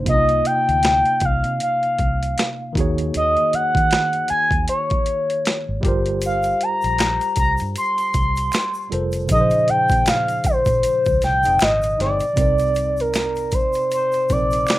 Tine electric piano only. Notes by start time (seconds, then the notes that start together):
0.04 C3 A#3 D4
0.10 F4 D#5
0.14 D#4
2.73 D#3 A#3 D#4
2.78 F#4 G#4 C#5
5.81 G3 F4 G4
5.86 A#4 C5
8.90 G3 F4 A4 A#4 C5
9.27 A#2 C#3 F3
9.32 D#4 G#4 A#4
9.41 C5
12.34 C3 C4 D#4
12.40 A#4 D5
14.29 C3 C4 D#4 A#4 C5